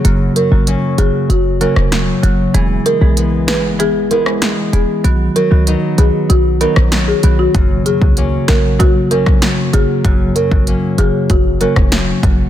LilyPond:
<<
  \new Staff \with { instrumentName = "Marimba" } { \time 4/4 \key fis \mixolydian \tempo 4 = 96 r8 ais'16 r8. gis'16 r16 fis'16 r16 ais'16 r4 r16 | r8 ais'16 r8. b'16 r16 gis'16 r16 ais'16 r8. gis'16 r16 | r8 ais'16 r8. gis'16 r16 fis'16 r16 ais'16 r8 gis'16 r16 fis'16 | r8 gis'16 r8. ais'16 r16 fis'16 r16 ais'16 r8. gis'16 r16 |
r8 ais'16 r8. gis'16 r16 fis'16 r16 ais'16 r4 r16 | }
  \new Staff \with { instrumentName = "Nylon-string guitar" } { \time 4/4 \key fis \mixolydian <fis, fis ais cis'>8 fis8 <fis ais cis'>4. <fis ais cis'>8 fis4 | e8 gis8 <gis b e'>8 b4 <gis b e'>8 gis4 | r8 fis8 <fis b dis'>8 b4 <fis b dis'>8 fis4 | fis,8 fis8 <fis ais cis'>8 ais4 <fis ais cis'>8 fis4 |
fis,8 fis8 <fis ais cis'>8 ais4 <fis ais cis'>8 fis4 | }
  \new Staff \with { instrumentName = "Marimba" } { \time 4/4 \key fis \mixolydian <cis fis ais fis'>16 r8 <cis fis ais fis'>8. <cis fis ais fis'>8 r8 <cis fis ais fis'>16 r8. <cis fis ais fis'>16 r16 | <e gis b gis'>8. <e gis b gis'>8. <e gis b gis'>8 <e gis b gis'>8. <e gis b gis'>8. <e gis b gis'>8 | <dis fis b fis'>16 r8 <dis fis b fis'>8. <dis fis b fis'>8 r8 <dis fis b fis'>16 r8. <dis fis b fis'>16 r16 | <cis fis ais fis'>8. <cis fis ais fis'>8. <cis fis ais fis'>8 <cis fis ais fis'>8. <cis fis ais fis'>8. <cis fis ais fis'>8 |
<cis fis ais fis'>16 r8 <cis fis ais fis'>8. <cis fis ais fis'>8 r8 <cis fis ais fis'>16 r8. <cis fis ais fis'>16 r16 | }
  \new Staff \with { instrumentName = "808-style bass" } { \clef bass \time 4/4 \key fis \mixolydian fis,,8 r16 gis,,8 r16 fis,,16 r16 fis,,8. e,,8. fis,,8 | e,,8 r16 b,,8. gis,,4.~ gis,,16 r16 e,,16 r16 | b,,8 r16 cis,8 r16 b,,16 r16 b,,8. ais,,8. b,,8 | fis,,8 r16 cis,8. ais,,4.~ ais,,16 r16 gis,,16 r16 |
fis,,8 r16 gis,,8 r16 fis,,16 r16 fis,,8. e,,8. fis,,8 | }
  \new DrumStaff \with { instrumentName = "Drums" } \drummode { \time 4/4 hh8 hh8 hh8 hh8 hh8 hh16 ss16 <hh sn>8 hh8 | hh8 hh8 hh8 <hh sn>8 hh8 hh16 ss16 <hh sn>8 hh8 | hh8 hh8 hh8 hh8 hh8 hh16 ss16 <hh sn>8 hh8 | <hh bd>8 hh16 bd16 hh8 <hh sn>8 <hh bd>8 hh16 <bd ss>16 <hh sn>8 hh8 |
<hh bd>8 hh16 bd16 hh8 hh8 <hh bd>8 hh16 <bd ss>16 <hh sn>8 <hh bd>8 | }
>>